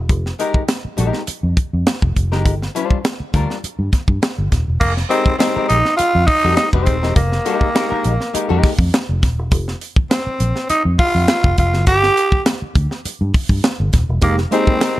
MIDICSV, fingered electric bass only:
0, 0, Header, 1, 3, 480
1, 0, Start_track
1, 0, Tempo, 588813
1, 79, Time_signature, 4, 2, 24, 8
1, 12226, End_track
2, 0, Start_track
2, 0, Title_t, "Fingered electric bass"
2, 0, Program_c, 0, 33
2, 78, Note_on_c, 0, 29, 86
2, 253, Note_off_c, 0, 29, 0
2, 803, Note_on_c, 0, 34, 83
2, 895, Note_off_c, 0, 34, 0
2, 1168, Note_on_c, 0, 41, 92
2, 1250, Note_off_c, 0, 41, 0
2, 1413, Note_on_c, 0, 41, 79
2, 1494, Note_off_c, 0, 41, 0
2, 1653, Note_on_c, 0, 29, 90
2, 1733, Note_off_c, 0, 29, 0
2, 1765, Note_on_c, 0, 29, 80
2, 1886, Note_off_c, 0, 29, 0
2, 1886, Note_on_c, 0, 30, 82
2, 2004, Note_off_c, 0, 30, 0
2, 2004, Note_on_c, 0, 31, 92
2, 2177, Note_off_c, 0, 31, 0
2, 2721, Note_on_c, 0, 38, 73
2, 2814, Note_off_c, 0, 38, 0
2, 3088, Note_on_c, 0, 43, 83
2, 3170, Note_off_c, 0, 43, 0
2, 3327, Note_on_c, 0, 43, 73
2, 3409, Note_off_c, 0, 43, 0
2, 3574, Note_on_c, 0, 31, 93
2, 3654, Note_off_c, 0, 31, 0
2, 3688, Note_on_c, 0, 27, 78
2, 3778, Note_off_c, 0, 27, 0
2, 3815, Note_on_c, 0, 28, 82
2, 3895, Note_off_c, 0, 28, 0
2, 3923, Note_on_c, 0, 29, 99
2, 4097, Note_off_c, 0, 29, 0
2, 4650, Note_on_c, 0, 34, 84
2, 4739, Note_off_c, 0, 34, 0
2, 5013, Note_on_c, 0, 41, 101
2, 5093, Note_off_c, 0, 41, 0
2, 5255, Note_on_c, 0, 41, 100
2, 5334, Note_off_c, 0, 41, 0
2, 5489, Note_on_c, 0, 29, 101
2, 5601, Note_off_c, 0, 29, 0
2, 5601, Note_on_c, 0, 27, 95
2, 5739, Note_off_c, 0, 27, 0
2, 5739, Note_on_c, 0, 28, 98
2, 5816, Note_off_c, 0, 28, 0
2, 5840, Note_on_c, 0, 29, 109
2, 6013, Note_off_c, 0, 29, 0
2, 6566, Note_on_c, 0, 34, 98
2, 6655, Note_off_c, 0, 34, 0
2, 6933, Note_on_c, 0, 41, 91
2, 7011, Note_off_c, 0, 41, 0
2, 7164, Note_on_c, 0, 41, 102
2, 7245, Note_off_c, 0, 41, 0
2, 7411, Note_on_c, 0, 29, 104
2, 7525, Note_off_c, 0, 29, 0
2, 7525, Note_on_c, 0, 27, 84
2, 7652, Note_off_c, 0, 27, 0
2, 7652, Note_on_c, 0, 28, 98
2, 7759, Note_off_c, 0, 28, 0
2, 7759, Note_on_c, 0, 29, 92
2, 7932, Note_off_c, 0, 29, 0
2, 8481, Note_on_c, 0, 34, 94
2, 8571, Note_off_c, 0, 34, 0
2, 8847, Note_on_c, 0, 41, 94
2, 8927, Note_off_c, 0, 41, 0
2, 9088, Note_on_c, 0, 41, 98
2, 9168, Note_off_c, 0, 41, 0
2, 9328, Note_on_c, 0, 29, 107
2, 9408, Note_off_c, 0, 29, 0
2, 9445, Note_on_c, 0, 29, 90
2, 9567, Note_off_c, 0, 29, 0
2, 9567, Note_on_c, 0, 30, 109
2, 9680, Note_off_c, 0, 30, 0
2, 9680, Note_on_c, 0, 31, 106
2, 9852, Note_off_c, 0, 31, 0
2, 10399, Note_on_c, 0, 38, 80
2, 10490, Note_off_c, 0, 38, 0
2, 10768, Note_on_c, 0, 43, 95
2, 10848, Note_off_c, 0, 43, 0
2, 11000, Note_on_c, 0, 43, 88
2, 11083, Note_off_c, 0, 43, 0
2, 11248, Note_on_c, 0, 31, 106
2, 11328, Note_off_c, 0, 31, 0
2, 11364, Note_on_c, 0, 27, 86
2, 11453, Note_off_c, 0, 27, 0
2, 11488, Note_on_c, 0, 28, 98
2, 11568, Note_off_c, 0, 28, 0
2, 11598, Note_on_c, 0, 29, 96
2, 11771, Note_off_c, 0, 29, 0
2, 12226, End_track
3, 0, Start_track
3, 0, Title_t, "Muted fingered electric bass strokes"
3, 444, Note_on_c, 9, 29, 41
3, 525, Note_off_c, 9, 29, 0
3, 691, Note_on_c, 9, 29, 45
3, 773, Note_off_c, 9, 29, 0
3, 1043, Note_on_c, 9, 29, 47
3, 1125, Note_off_c, 9, 29, 0
3, 2370, Note_on_c, 9, 29, 45
3, 2451, Note_off_c, 9, 29, 0
3, 2610, Note_on_c, 9, 29, 48
3, 2691, Note_off_c, 9, 29, 0
3, 2966, Note_on_c, 9, 29, 48
3, 3048, Note_off_c, 9, 29, 0
3, 4286, Note_on_c, 9, 29, 52
3, 4367, Note_off_c, 9, 29, 0
3, 4537, Note_on_c, 9, 29, 54
3, 4619, Note_off_c, 9, 29, 0
3, 4888, Note_on_c, 9, 29, 52
3, 4970, Note_off_c, 9, 29, 0
3, 6206, Note_on_c, 9, 29, 48
3, 6288, Note_off_c, 9, 29, 0
3, 6454, Note_on_c, 9, 29, 56
3, 6535, Note_off_c, 9, 29, 0
3, 6804, Note_on_c, 9, 29, 46
3, 6886, Note_off_c, 9, 29, 0
3, 8124, Note_on_c, 9, 29, 51
3, 8206, Note_off_c, 9, 29, 0
3, 8370, Note_on_c, 9, 29, 53
3, 8452, Note_off_c, 9, 29, 0
3, 8721, Note_on_c, 9, 29, 50
3, 8803, Note_off_c, 9, 29, 0
3, 10045, Note_on_c, 9, 29, 52
3, 10126, Note_off_c, 9, 29, 0
3, 10289, Note_on_c, 9, 29, 55
3, 10370, Note_off_c, 9, 29, 0
3, 10642, Note_on_c, 9, 29, 45
3, 10723, Note_off_c, 9, 29, 0
3, 11965, Note_on_c, 9, 29, 51
3, 12047, Note_off_c, 9, 29, 0
3, 12226, End_track
0, 0, End_of_file